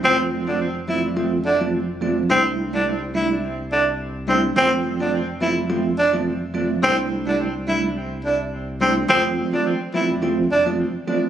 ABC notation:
X:1
M:4/4
L:1/16
Q:"Swing 16ths" 1/4=106
K:Flyd
V:1 name="Tenor saxophone"
C z2 D z2 E z3 D z4 z | C z2 D z2 E z3 D z3 C z | C z2 D z2 E z3 D z4 z | C z2 D z2 E z3 D z3 C z |
C z2 D z2 E z3 D z4 z |]
V:2 name="Tine electric piano"
[F,A,CF]3 [F,A,CF] z2 [F,A,CF] z [F,A,CF] z2 [F,A,CF] z2 [F,A,CF] z | [G,A,DE]3 [G,A,DE] z2 [G,A,DE] z6 z [G,A,DE] z | [F,A,CF]3 [F,A,CF] z2 [F,A,CF] z [F,A,CF] z2 [F,A,CF] z2 [F,A,CF] z | [G,A,DE]3 [G,A,DE] z2 [G,A,DE] z6 z [G,A,DE] z |
[F,A,CF]3 [F,A,CF] z2 [F,A,CF] z [F,A,CF] z2 [F,A,CF] z2 [F,A,CF] z |]
V:3 name="Sub bass" clef=bass
F,,,16 | C,,16 | F,,,16 | C,,16 |
F,,,3 z4 E,,,3 F,,,3 z3 |]